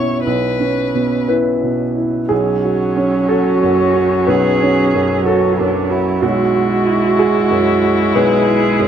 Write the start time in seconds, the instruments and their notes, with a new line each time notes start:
Already playing: upright piano B1 B2 C#4 E4, violin C#5
0.25 upright piano B1, violin B4
0.59 upright piano C#4
0.94 upright piano B2
1.28 upright piano E4 B4
1.63 upright piano B2
1.96 upright piano E4
2.29 upright piano B1 G#4, viola F#3, violin C#4
2.64 upright piano F#4
2.97 upright piano C#4
3.28 cello F#4, upright piano F#4 A4
3.63 upright piano F#2
3.96 upright piano F#4
4.27 upright piano B1 B4, cello G#4
4.61 upright piano C#4
4.95 upright piano F#2
5.26 cello F#4, upright piano F#4 A4
5.58 upright piano F#2, cello D4
5.90 cello E4, upright piano F#4
6.22 upright piano B1 F#4, viola G#3, violin E4, cello F#4
6.55 upright piano F#4
6.87 upright piano E4
7.19 upright piano F#4 G#4
7.50 upright piano F#2
7.83 upright piano F#4
8.15 upright piano B1 B4, cello G#4
8.47 upright piano E4
8.79 upright piano F#2